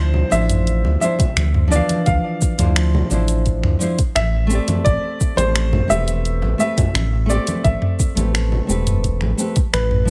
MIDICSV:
0, 0, Header, 1, 5, 480
1, 0, Start_track
1, 0, Key_signature, -1, "minor"
1, 0, Tempo, 697674
1, 1421, Time_signature, 4, 2, 24, 8
1, 6949, End_track
2, 0, Start_track
2, 0, Title_t, "Grand piano"
2, 0, Program_c, 0, 0
2, 0, Note_on_c, 0, 72, 116
2, 219, Note_on_c, 0, 76, 124
2, 232, Note_off_c, 0, 72, 0
2, 687, Note_off_c, 0, 76, 0
2, 697, Note_on_c, 0, 76, 98
2, 1180, Note_on_c, 0, 74, 102
2, 1194, Note_off_c, 0, 76, 0
2, 1417, Note_on_c, 0, 77, 104
2, 1428, Note_off_c, 0, 74, 0
2, 1871, Note_off_c, 0, 77, 0
2, 2858, Note_on_c, 0, 76, 108
2, 3334, Note_on_c, 0, 74, 105
2, 3354, Note_off_c, 0, 76, 0
2, 3696, Note_on_c, 0, 72, 104
2, 3709, Note_off_c, 0, 74, 0
2, 4059, Note_on_c, 0, 76, 127
2, 4069, Note_off_c, 0, 72, 0
2, 4512, Note_off_c, 0, 76, 0
2, 4541, Note_on_c, 0, 76, 108
2, 5019, Note_on_c, 0, 74, 93
2, 5036, Note_off_c, 0, 76, 0
2, 5258, Note_on_c, 0, 76, 89
2, 5267, Note_off_c, 0, 74, 0
2, 5712, Note_off_c, 0, 76, 0
2, 6697, Note_on_c, 0, 71, 87
2, 6949, Note_off_c, 0, 71, 0
2, 6949, End_track
3, 0, Start_track
3, 0, Title_t, "Nylon-string guitar"
3, 0, Program_c, 1, 24
3, 0, Note_on_c, 1, 53, 69
3, 0, Note_on_c, 1, 62, 62
3, 0, Note_on_c, 1, 64, 69
3, 0, Note_on_c, 1, 72, 73
3, 186, Note_off_c, 1, 53, 0
3, 191, Note_off_c, 1, 62, 0
3, 193, Note_off_c, 1, 64, 0
3, 199, Note_off_c, 1, 72, 0
3, 206, Note_on_c, 1, 53, 81
3, 216, Note_on_c, 1, 62, 74
3, 224, Note_on_c, 1, 64, 70
3, 231, Note_on_c, 1, 72, 85
3, 665, Note_off_c, 1, 53, 0
3, 670, Note_off_c, 1, 62, 0
3, 674, Note_off_c, 1, 64, 0
3, 678, Note_off_c, 1, 72, 0
3, 689, Note_on_c, 1, 53, 81
3, 698, Note_on_c, 1, 62, 69
3, 708, Note_on_c, 1, 64, 72
3, 716, Note_on_c, 1, 72, 83
3, 822, Note_off_c, 1, 53, 0
3, 826, Note_off_c, 1, 62, 0
3, 831, Note_off_c, 1, 64, 0
3, 835, Note_off_c, 1, 72, 0
3, 1153, Note_on_c, 1, 53, 90
3, 1172, Note_on_c, 1, 62, 85
3, 1190, Note_on_c, 1, 52, 84
3, 1207, Note_on_c, 1, 77, 101
3, 1739, Note_off_c, 1, 53, 0
3, 1748, Note_off_c, 1, 62, 0
3, 1757, Note_off_c, 1, 52, 0
3, 1766, Note_off_c, 1, 77, 0
3, 1774, Note_on_c, 1, 53, 73
3, 1782, Note_on_c, 1, 62, 67
3, 1792, Note_on_c, 1, 64, 68
3, 1797, Note_on_c, 1, 72, 78
3, 2109, Note_off_c, 1, 53, 0
3, 2113, Note_off_c, 1, 62, 0
3, 2118, Note_off_c, 1, 64, 0
3, 2120, Note_off_c, 1, 72, 0
3, 2132, Note_on_c, 1, 53, 78
3, 2140, Note_on_c, 1, 62, 75
3, 2149, Note_on_c, 1, 64, 77
3, 2157, Note_on_c, 1, 72, 88
3, 2588, Note_off_c, 1, 53, 0
3, 2592, Note_off_c, 1, 62, 0
3, 2596, Note_off_c, 1, 64, 0
3, 2601, Note_off_c, 1, 72, 0
3, 2607, Note_on_c, 1, 53, 80
3, 2614, Note_on_c, 1, 62, 74
3, 2627, Note_on_c, 1, 64, 72
3, 2633, Note_on_c, 1, 72, 90
3, 2741, Note_off_c, 1, 53, 0
3, 2744, Note_off_c, 1, 62, 0
3, 2751, Note_off_c, 1, 64, 0
3, 2754, Note_off_c, 1, 72, 0
3, 3074, Note_on_c, 1, 57, 95
3, 3093, Note_on_c, 1, 60, 86
3, 3112, Note_on_c, 1, 67, 84
3, 3130, Note_on_c, 1, 74, 105
3, 3659, Note_off_c, 1, 57, 0
3, 3669, Note_off_c, 1, 60, 0
3, 3678, Note_off_c, 1, 67, 0
3, 3687, Note_off_c, 1, 74, 0
3, 3687, Note_on_c, 1, 57, 70
3, 3698, Note_on_c, 1, 60, 66
3, 3706, Note_on_c, 1, 67, 67
3, 3714, Note_on_c, 1, 72, 81
3, 4025, Note_off_c, 1, 57, 0
3, 4031, Note_off_c, 1, 60, 0
3, 4035, Note_off_c, 1, 67, 0
3, 4039, Note_off_c, 1, 72, 0
3, 4044, Note_on_c, 1, 57, 82
3, 4053, Note_on_c, 1, 60, 79
3, 4064, Note_on_c, 1, 67, 77
3, 4072, Note_on_c, 1, 71, 88
3, 4504, Note_off_c, 1, 57, 0
3, 4509, Note_off_c, 1, 60, 0
3, 4514, Note_off_c, 1, 67, 0
3, 4518, Note_off_c, 1, 71, 0
3, 4527, Note_on_c, 1, 57, 79
3, 4536, Note_on_c, 1, 60, 72
3, 4544, Note_on_c, 1, 67, 73
3, 4554, Note_on_c, 1, 71, 92
3, 4661, Note_off_c, 1, 57, 0
3, 4665, Note_off_c, 1, 60, 0
3, 4669, Note_off_c, 1, 67, 0
3, 4674, Note_off_c, 1, 71, 0
3, 4995, Note_on_c, 1, 57, 93
3, 5013, Note_on_c, 1, 60, 83
3, 5028, Note_on_c, 1, 67, 88
3, 5048, Note_on_c, 1, 74, 100
3, 5579, Note_off_c, 1, 57, 0
3, 5588, Note_off_c, 1, 60, 0
3, 5596, Note_off_c, 1, 67, 0
3, 5606, Note_off_c, 1, 74, 0
3, 5608, Note_on_c, 1, 57, 73
3, 5619, Note_on_c, 1, 60, 65
3, 5626, Note_on_c, 1, 67, 66
3, 5636, Note_on_c, 1, 71, 76
3, 5946, Note_off_c, 1, 57, 0
3, 5951, Note_off_c, 1, 60, 0
3, 5955, Note_off_c, 1, 67, 0
3, 5960, Note_off_c, 1, 71, 0
3, 5965, Note_on_c, 1, 57, 80
3, 5975, Note_on_c, 1, 60, 75
3, 5982, Note_on_c, 1, 67, 72
3, 5991, Note_on_c, 1, 71, 85
3, 6424, Note_off_c, 1, 57, 0
3, 6429, Note_off_c, 1, 60, 0
3, 6433, Note_off_c, 1, 67, 0
3, 6437, Note_off_c, 1, 71, 0
3, 6449, Note_on_c, 1, 57, 76
3, 6457, Note_on_c, 1, 60, 71
3, 6465, Note_on_c, 1, 67, 74
3, 6473, Note_on_c, 1, 71, 89
3, 6582, Note_off_c, 1, 57, 0
3, 6586, Note_off_c, 1, 60, 0
3, 6590, Note_off_c, 1, 67, 0
3, 6594, Note_off_c, 1, 71, 0
3, 6916, Note_on_c, 1, 53, 90
3, 6949, Note_off_c, 1, 53, 0
3, 6949, End_track
4, 0, Start_track
4, 0, Title_t, "Analog synth bass"
4, 0, Program_c, 2, 38
4, 0, Note_on_c, 2, 38, 88
4, 165, Note_off_c, 2, 38, 0
4, 220, Note_on_c, 2, 33, 85
4, 579, Note_on_c, 2, 38, 82
4, 589, Note_off_c, 2, 33, 0
4, 665, Note_off_c, 2, 38, 0
4, 939, Note_on_c, 2, 38, 102
4, 1244, Note_off_c, 2, 38, 0
4, 1425, Note_on_c, 2, 38, 101
4, 1508, Note_off_c, 2, 38, 0
4, 1779, Note_on_c, 2, 38, 91
4, 2084, Note_off_c, 2, 38, 0
4, 2139, Note_on_c, 2, 33, 92
4, 2500, Note_on_c, 2, 38, 87
4, 2510, Note_off_c, 2, 33, 0
4, 2585, Note_off_c, 2, 38, 0
4, 2859, Note_on_c, 2, 33, 111
4, 3164, Note_off_c, 2, 33, 0
4, 3341, Note_on_c, 2, 33, 101
4, 3426, Note_off_c, 2, 33, 0
4, 3698, Note_on_c, 2, 33, 90
4, 4003, Note_off_c, 2, 33, 0
4, 4061, Note_on_c, 2, 28, 93
4, 4418, Note_on_c, 2, 33, 81
4, 4428, Note_off_c, 2, 28, 0
4, 4504, Note_off_c, 2, 33, 0
4, 4779, Note_on_c, 2, 33, 99
4, 5084, Note_off_c, 2, 33, 0
4, 5260, Note_on_c, 2, 33, 100
4, 5345, Note_off_c, 2, 33, 0
4, 5617, Note_on_c, 2, 33, 90
4, 5923, Note_off_c, 2, 33, 0
4, 5977, Note_on_c, 2, 28, 86
4, 6340, Note_on_c, 2, 33, 80
4, 6350, Note_off_c, 2, 28, 0
4, 6425, Note_off_c, 2, 33, 0
4, 6698, Note_on_c, 2, 33, 105
4, 6949, Note_off_c, 2, 33, 0
4, 6949, End_track
5, 0, Start_track
5, 0, Title_t, "Drums"
5, 95, Note_on_c, 9, 64, 88
5, 164, Note_off_c, 9, 64, 0
5, 219, Note_on_c, 9, 82, 75
5, 220, Note_on_c, 9, 63, 66
5, 288, Note_off_c, 9, 82, 0
5, 289, Note_off_c, 9, 63, 0
5, 341, Note_on_c, 9, 42, 61
5, 341, Note_on_c, 9, 45, 77
5, 341, Note_on_c, 9, 82, 49
5, 410, Note_off_c, 9, 42, 0
5, 410, Note_off_c, 9, 45, 0
5, 410, Note_off_c, 9, 82, 0
5, 462, Note_on_c, 9, 42, 44
5, 463, Note_on_c, 9, 82, 30
5, 531, Note_off_c, 9, 42, 0
5, 531, Note_off_c, 9, 82, 0
5, 582, Note_on_c, 9, 63, 81
5, 583, Note_on_c, 9, 60, 49
5, 651, Note_off_c, 9, 63, 0
5, 652, Note_off_c, 9, 60, 0
5, 702, Note_on_c, 9, 82, 76
5, 770, Note_off_c, 9, 82, 0
5, 817, Note_on_c, 9, 64, 85
5, 823, Note_on_c, 9, 36, 106
5, 824, Note_on_c, 9, 42, 59
5, 824, Note_on_c, 9, 82, 44
5, 886, Note_off_c, 9, 64, 0
5, 892, Note_off_c, 9, 36, 0
5, 892, Note_off_c, 9, 42, 0
5, 893, Note_off_c, 9, 82, 0
5, 941, Note_on_c, 9, 26, 108
5, 941, Note_on_c, 9, 42, 47
5, 942, Note_on_c, 9, 82, 34
5, 943, Note_on_c, 9, 63, 73
5, 1010, Note_off_c, 9, 26, 0
5, 1010, Note_off_c, 9, 42, 0
5, 1011, Note_off_c, 9, 82, 0
5, 1012, Note_off_c, 9, 63, 0
5, 1062, Note_on_c, 9, 45, 75
5, 1131, Note_off_c, 9, 45, 0
5, 1183, Note_on_c, 9, 60, 47
5, 1183, Note_on_c, 9, 82, 83
5, 1252, Note_off_c, 9, 60, 0
5, 1252, Note_off_c, 9, 82, 0
5, 1302, Note_on_c, 9, 42, 57
5, 1303, Note_on_c, 9, 82, 41
5, 1306, Note_on_c, 9, 63, 85
5, 1371, Note_off_c, 9, 42, 0
5, 1372, Note_off_c, 9, 82, 0
5, 1375, Note_off_c, 9, 63, 0
5, 1419, Note_on_c, 9, 42, 43
5, 1420, Note_on_c, 9, 82, 33
5, 1424, Note_on_c, 9, 36, 123
5, 1488, Note_off_c, 9, 42, 0
5, 1489, Note_off_c, 9, 82, 0
5, 1493, Note_off_c, 9, 36, 0
5, 1661, Note_on_c, 9, 82, 81
5, 1664, Note_on_c, 9, 36, 108
5, 1730, Note_off_c, 9, 82, 0
5, 1733, Note_off_c, 9, 36, 0
5, 1780, Note_on_c, 9, 42, 60
5, 1780, Note_on_c, 9, 45, 74
5, 1781, Note_on_c, 9, 82, 49
5, 1782, Note_on_c, 9, 63, 86
5, 1786, Note_on_c, 9, 60, 47
5, 1849, Note_off_c, 9, 42, 0
5, 1849, Note_off_c, 9, 45, 0
5, 1850, Note_off_c, 9, 82, 0
5, 1851, Note_off_c, 9, 63, 0
5, 1855, Note_off_c, 9, 60, 0
5, 1900, Note_on_c, 9, 26, 107
5, 1900, Note_on_c, 9, 42, 44
5, 1901, Note_on_c, 9, 82, 35
5, 1969, Note_off_c, 9, 26, 0
5, 1969, Note_off_c, 9, 42, 0
5, 1970, Note_off_c, 9, 82, 0
5, 2027, Note_on_c, 9, 64, 99
5, 2096, Note_off_c, 9, 64, 0
5, 2138, Note_on_c, 9, 82, 77
5, 2207, Note_off_c, 9, 82, 0
5, 2258, Note_on_c, 9, 42, 56
5, 2258, Note_on_c, 9, 82, 47
5, 2327, Note_off_c, 9, 42, 0
5, 2327, Note_off_c, 9, 82, 0
5, 2378, Note_on_c, 9, 42, 39
5, 2379, Note_on_c, 9, 82, 33
5, 2384, Note_on_c, 9, 36, 61
5, 2447, Note_off_c, 9, 42, 0
5, 2448, Note_off_c, 9, 82, 0
5, 2453, Note_off_c, 9, 36, 0
5, 2500, Note_on_c, 9, 63, 84
5, 2501, Note_on_c, 9, 26, 34
5, 2501, Note_on_c, 9, 45, 70
5, 2568, Note_off_c, 9, 63, 0
5, 2570, Note_off_c, 9, 26, 0
5, 2570, Note_off_c, 9, 45, 0
5, 2620, Note_on_c, 9, 82, 79
5, 2689, Note_off_c, 9, 82, 0
5, 2742, Note_on_c, 9, 42, 54
5, 2743, Note_on_c, 9, 82, 44
5, 2744, Note_on_c, 9, 36, 102
5, 2811, Note_off_c, 9, 42, 0
5, 2812, Note_off_c, 9, 36, 0
5, 2812, Note_off_c, 9, 82, 0
5, 2857, Note_on_c, 9, 63, 71
5, 2862, Note_on_c, 9, 26, 105
5, 2862, Note_on_c, 9, 42, 48
5, 2862, Note_on_c, 9, 82, 36
5, 2926, Note_off_c, 9, 63, 0
5, 2930, Note_off_c, 9, 26, 0
5, 2930, Note_off_c, 9, 42, 0
5, 2931, Note_off_c, 9, 82, 0
5, 3098, Note_on_c, 9, 82, 84
5, 3167, Note_off_c, 9, 82, 0
5, 3219, Note_on_c, 9, 42, 56
5, 3219, Note_on_c, 9, 45, 70
5, 3219, Note_on_c, 9, 82, 44
5, 3221, Note_on_c, 9, 60, 48
5, 3227, Note_on_c, 9, 63, 96
5, 3287, Note_off_c, 9, 42, 0
5, 3287, Note_off_c, 9, 45, 0
5, 3288, Note_off_c, 9, 82, 0
5, 3290, Note_off_c, 9, 60, 0
5, 3296, Note_off_c, 9, 63, 0
5, 3342, Note_on_c, 9, 42, 44
5, 3342, Note_on_c, 9, 82, 34
5, 3343, Note_on_c, 9, 36, 125
5, 3411, Note_off_c, 9, 42, 0
5, 3411, Note_off_c, 9, 82, 0
5, 3412, Note_off_c, 9, 36, 0
5, 3581, Note_on_c, 9, 82, 85
5, 3583, Note_on_c, 9, 36, 100
5, 3650, Note_off_c, 9, 82, 0
5, 3652, Note_off_c, 9, 36, 0
5, 3695, Note_on_c, 9, 63, 92
5, 3703, Note_on_c, 9, 42, 54
5, 3703, Note_on_c, 9, 82, 51
5, 3704, Note_on_c, 9, 60, 50
5, 3764, Note_off_c, 9, 63, 0
5, 3771, Note_off_c, 9, 42, 0
5, 3772, Note_off_c, 9, 82, 0
5, 3773, Note_off_c, 9, 60, 0
5, 3822, Note_on_c, 9, 26, 103
5, 3822, Note_on_c, 9, 42, 43
5, 3823, Note_on_c, 9, 82, 37
5, 3891, Note_off_c, 9, 26, 0
5, 3891, Note_off_c, 9, 42, 0
5, 3891, Note_off_c, 9, 82, 0
5, 3941, Note_on_c, 9, 64, 99
5, 3942, Note_on_c, 9, 45, 76
5, 4010, Note_off_c, 9, 45, 0
5, 4010, Note_off_c, 9, 64, 0
5, 4058, Note_on_c, 9, 63, 70
5, 4062, Note_on_c, 9, 82, 83
5, 4126, Note_off_c, 9, 63, 0
5, 4131, Note_off_c, 9, 82, 0
5, 4181, Note_on_c, 9, 42, 53
5, 4182, Note_on_c, 9, 82, 50
5, 4250, Note_off_c, 9, 42, 0
5, 4250, Note_off_c, 9, 82, 0
5, 4302, Note_on_c, 9, 42, 40
5, 4303, Note_on_c, 9, 82, 33
5, 4371, Note_off_c, 9, 42, 0
5, 4372, Note_off_c, 9, 82, 0
5, 4417, Note_on_c, 9, 63, 96
5, 4422, Note_on_c, 9, 60, 46
5, 4486, Note_off_c, 9, 63, 0
5, 4490, Note_off_c, 9, 60, 0
5, 4541, Note_on_c, 9, 82, 88
5, 4610, Note_off_c, 9, 82, 0
5, 4662, Note_on_c, 9, 36, 109
5, 4663, Note_on_c, 9, 42, 51
5, 4663, Note_on_c, 9, 45, 69
5, 4663, Note_on_c, 9, 82, 45
5, 4665, Note_on_c, 9, 64, 97
5, 4730, Note_off_c, 9, 36, 0
5, 4732, Note_off_c, 9, 42, 0
5, 4732, Note_off_c, 9, 45, 0
5, 4732, Note_off_c, 9, 82, 0
5, 4734, Note_off_c, 9, 64, 0
5, 4777, Note_on_c, 9, 63, 70
5, 4783, Note_on_c, 9, 26, 100
5, 4783, Note_on_c, 9, 42, 42
5, 4783, Note_on_c, 9, 82, 36
5, 4845, Note_off_c, 9, 63, 0
5, 4852, Note_off_c, 9, 26, 0
5, 4852, Note_off_c, 9, 42, 0
5, 4852, Note_off_c, 9, 82, 0
5, 5022, Note_on_c, 9, 82, 89
5, 5025, Note_on_c, 9, 60, 51
5, 5091, Note_off_c, 9, 82, 0
5, 5093, Note_off_c, 9, 60, 0
5, 5140, Note_on_c, 9, 42, 53
5, 5141, Note_on_c, 9, 82, 47
5, 5147, Note_on_c, 9, 63, 100
5, 5209, Note_off_c, 9, 42, 0
5, 5210, Note_off_c, 9, 82, 0
5, 5216, Note_off_c, 9, 63, 0
5, 5260, Note_on_c, 9, 42, 43
5, 5261, Note_on_c, 9, 36, 123
5, 5261, Note_on_c, 9, 82, 35
5, 5329, Note_off_c, 9, 42, 0
5, 5330, Note_off_c, 9, 36, 0
5, 5330, Note_off_c, 9, 82, 0
5, 5379, Note_on_c, 9, 45, 78
5, 5448, Note_off_c, 9, 45, 0
5, 5501, Note_on_c, 9, 36, 109
5, 5501, Note_on_c, 9, 82, 80
5, 5569, Note_off_c, 9, 36, 0
5, 5570, Note_off_c, 9, 82, 0
5, 5621, Note_on_c, 9, 42, 52
5, 5622, Note_on_c, 9, 63, 85
5, 5622, Note_on_c, 9, 82, 49
5, 5626, Note_on_c, 9, 60, 48
5, 5690, Note_off_c, 9, 42, 0
5, 5691, Note_off_c, 9, 63, 0
5, 5691, Note_off_c, 9, 82, 0
5, 5695, Note_off_c, 9, 60, 0
5, 5744, Note_on_c, 9, 26, 99
5, 5744, Note_on_c, 9, 42, 41
5, 5744, Note_on_c, 9, 82, 33
5, 5812, Note_off_c, 9, 26, 0
5, 5812, Note_off_c, 9, 42, 0
5, 5813, Note_off_c, 9, 82, 0
5, 5862, Note_on_c, 9, 64, 87
5, 5931, Note_off_c, 9, 64, 0
5, 5982, Note_on_c, 9, 82, 83
5, 6051, Note_off_c, 9, 82, 0
5, 6101, Note_on_c, 9, 42, 55
5, 6101, Note_on_c, 9, 45, 77
5, 6102, Note_on_c, 9, 82, 51
5, 6170, Note_off_c, 9, 42, 0
5, 6170, Note_off_c, 9, 45, 0
5, 6171, Note_off_c, 9, 82, 0
5, 6220, Note_on_c, 9, 36, 58
5, 6221, Note_on_c, 9, 42, 40
5, 6221, Note_on_c, 9, 82, 31
5, 6289, Note_off_c, 9, 36, 0
5, 6289, Note_off_c, 9, 42, 0
5, 6290, Note_off_c, 9, 82, 0
5, 6335, Note_on_c, 9, 26, 30
5, 6344, Note_on_c, 9, 63, 92
5, 6404, Note_off_c, 9, 26, 0
5, 6412, Note_off_c, 9, 63, 0
5, 6458, Note_on_c, 9, 82, 84
5, 6527, Note_off_c, 9, 82, 0
5, 6576, Note_on_c, 9, 42, 49
5, 6577, Note_on_c, 9, 82, 48
5, 6580, Note_on_c, 9, 36, 114
5, 6645, Note_off_c, 9, 42, 0
5, 6646, Note_off_c, 9, 82, 0
5, 6649, Note_off_c, 9, 36, 0
5, 6699, Note_on_c, 9, 26, 104
5, 6699, Note_on_c, 9, 42, 46
5, 6699, Note_on_c, 9, 63, 67
5, 6699, Note_on_c, 9, 82, 35
5, 6767, Note_off_c, 9, 26, 0
5, 6767, Note_off_c, 9, 42, 0
5, 6768, Note_off_c, 9, 63, 0
5, 6768, Note_off_c, 9, 82, 0
5, 6818, Note_on_c, 9, 45, 73
5, 6887, Note_off_c, 9, 45, 0
5, 6949, End_track
0, 0, End_of_file